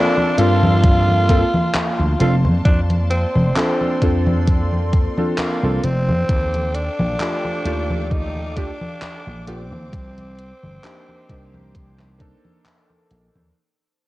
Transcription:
0.00 0.33 A#3 medium
0.00 2.16 A#3 medium
0.00 0.33 C4 medium
0.00 0.40 D4 loud
0.00 0.33 F4 medium
0.00 0.34 A4 medium
0.00 2.17 F5 medium
0.00 2.17 A5 medium
0.00 2.16 C6 medium
0.18 high conga soft
0.38 1.42 G2 medium
0.38 1.24 A#3 medium
0.38 1.24 C4 medium
0.38 2.19 F4 loud
0.38 1.24 F4 medium
0.38 1.25 A4 medium
0.38 closed hi-hat medium
0.63 high conga medium
0.84 kick loud
0.84 closed hi-hat medium
0.84 high conga soft
1.09 high conga soft
1.29 1.41 A#3 medium
1.29 1.41 C4 medium
1.29 1.41 F4 medium
1.29 1.42 A4 loud
1.29 kick medium
1.29 closed hi-hat medium
1.54 high conga medium
1.75 clap loud
1.75 closed hi-hat medium
1.75 high conga soft
1.99 2.14 D2 medium
1.99 high conga soft
2.19 2.46 F1 loud
2.19 6.25 A#3 medium
2.19 2.32 C4 medium
2.19 2.32 D4 medium
2.19 2.36 F4 loud
2.19 2.32 F4 medium
2.19 2.32 A4 loud
2.19 6.25 D5 medium
2.19 4.00 A5 medium
2.19 6.25 C6 medium
2.19 closed hi-hat medium
2.45 2.59 F2 medium
2.45 high conga medium
2.65 3.24 F2 loud
2.65 2.81 D4 loud
2.65 kick loud
2.65 closed hi-hat medium
2.65 high conga soft
2.90 closed hi-hat soft
2.90 high conga soft
3.11 4.89 C4 loud
3.11 closed hi-hat medium
3.35 3.50 F1 medium
3.35 high conga medium
3.56 3.97 C4 medium
3.56 3.97 D4 medium
3.56 3.97 F4 medium
3.56 3.97 A4 medium
3.56 clap loud
3.56 closed hi-hat medium
3.56 high conga soft
3.81 high conga soft
4.00 5.06 F2 medium
4.00 5.11 C4 medium
4.00 5.11 D4 medium
4.00 5.12 F4 medium
4.00 5.12 A4 medium
4.00 kick medium
4.00 closed hi-hat medium
4.27 high conga medium
4.47 kick loud
4.47 closed hi-hat medium
4.47 high conga soft
4.72 high conga soft
4.93 kick loud
4.93 closed hi-hat medium
5.17 5.57 C4 medium
5.17 5.57 D4 medium
5.17 5.57 F4 medium
5.17 5.58 A4 medium
5.17 high conga medium
5.38 5.85 A#3 loud
5.38 clap loud
5.38 closed hi-hat medium
5.38 high conga soft
5.62 5.78 C2 medium
5.62 5.79 C4 medium
5.62 5.79 D4 medium
5.62 5.79 F4 medium
5.62 5.79 A4 medium
5.62 high conga soft
5.83 6.10 F1 loud
5.83 6.76 C4 loud
5.83 closed hi-hat medium
6.08 6.23 F2 medium
6.08 high conga medium
6.29 6.88 D#2 loud
6.29 9.89 A4 medium
6.29 9.89 F5 medium
6.29 9.89 G5 medium
6.29 13.52 D6 medium
6.29 kick loud
6.29 closed hi-hat medium
6.29 high conga soft
6.54 closed hi-hat soft
6.54 high conga soft
6.75 8.13 D4 loud
6.75 closed hi-hat medium
6.99 7.14 A#1 medium
6.99 high conga medium
7.20 7.60 A3 medium
7.20 7.61 D4 medium
7.20 7.61 F4 medium
7.20 7.61 G4 medium
7.20 clap loud
7.20 closed hi-hat medium
7.20 high conga soft
7.45 high conga soft
7.65 8.70 D#2 medium
7.65 8.51 A3 medium
7.65 8.52 F4 medium
7.65 8.52 G4 medium
7.65 8.52 D5 medium
7.65 closed hi-hat medium
7.90 high conga medium
8.11 8.58 D#4 loud
8.11 kick loud
8.11 closed hi-hat medium
8.11 high conga soft
8.36 high conga soft
8.56 8.68 A3 loud
8.56 8.68 D4 medium
8.56 9.47 D4 loud
8.56 8.69 F4 medium
8.56 8.69 G4 loud
8.56 kick medium
8.56 closed hi-hat medium
8.81 high conga medium
9.02 clap loud
9.02 closed hi-hat medium
9.02 high conga soft
9.27 9.41 A#1 medium
9.27 high conga soft
9.47 9.72 A#1 loud
9.47 9.59 A3 medium
9.47 12.62 C4 loud
9.47 9.59 D4 medium
9.47 9.59 F4 medium
9.47 9.60 G4 loud
9.47 closed hi-hat medium
9.72 9.87 D#2 medium
9.72 high conga medium
9.93 10.51 C2 loud
9.93 13.53 C5 medium
9.93 kick loud
9.93 closed hi-hat medium
9.93 high conga soft
10.18 closed hi-hat soft
10.18 high conga soft
10.38 closed hi-hat medium
10.63 10.78 G1 medium
10.63 high conga medium
10.83 11.24 A#3 medium
10.83 11.24 D4 medium
10.83 11.24 D#4 medium
10.83 11.25 G4 medium
10.83 clap loud
10.83 closed hi-hat medium
10.83 high conga medium
11.09 high conga soft
11.28 12.33 C2 medium
11.28 12.16 A#3 medium
11.28 12.16 D4 medium
11.28 12.16 D#4 medium
11.28 12.16 G4 medium
11.28 kick medium
11.28 closed hi-hat medium
11.54 high conga medium
11.75 kick loud
11.75 closed hi-hat medium
11.75 high conga soft
11.99 clap soft
11.99 high conga soft
12.19 13.53 A#3 medium
12.19 13.54 D4 medium
12.19 13.54 D#4 medium
12.19 13.55 A4 loud
12.19 kick loud
12.19 closed hi-hat medium
12.45 high conga medium
12.66 clap loud
12.66 closed hi-hat medium
12.66 high conga soft
12.90 high conga soft
13.11 13.29 A#1 medium
13.11 closed hi-hat medium
13.36 13.50 D#2 medium
13.36 high conga medium

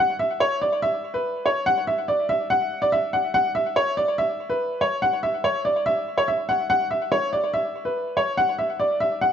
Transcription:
0.00 0.15 F#5 loud
0.19 0.36 E5 medium
0.40 0.57 C#5 loud
0.62 0.78 D5 medium
0.82 1.12 E5 medium
1.14 1.43 B4 medium
1.46 1.62 C#5 medium
1.66 1.83 F#5 loud
1.87 2.04 E5 medium
2.08 2.25 D5 medium
2.29 2.46 E5 medium
2.50 2.80 F#5 medium
2.82 2.90 D5 medium
2.92 3.09 E5 medium
3.13 3.30 F#5 medium
3.34 3.51 F#5 loud
3.55 3.72 E5 medium
3.76 3.93 C#5 loud
3.97 4.14 D5 medium
4.18 4.48 E5 medium
4.50 4.79 B4 medium
4.81 4.98 C#5 medium
5.02 5.19 F#5 medium
5.23 5.39 E5 medium
5.44 5.61 C#5 medium
5.65 5.81 D5 medium
5.86 6.15 E5 medium
6.18 6.26 C#5 medium
6.28 6.44 E5 medium
6.49 6.65 F#5 medium
6.70 6.86 F#5 loud
6.91 7.07 E5 medium
7.12 7.28 C#5 medium
7.33 7.49 D5 medium
7.54 7.83 E5 medium
7.85 8.15 B4 medium
8.17 8.33 C#5 medium
8.38 8.54 F#5 loud
8.59 8.75 E5 medium
8.80 8.96 D5 medium
9.00 9.17 E5 medium
9.21 9.33 F#5 medium

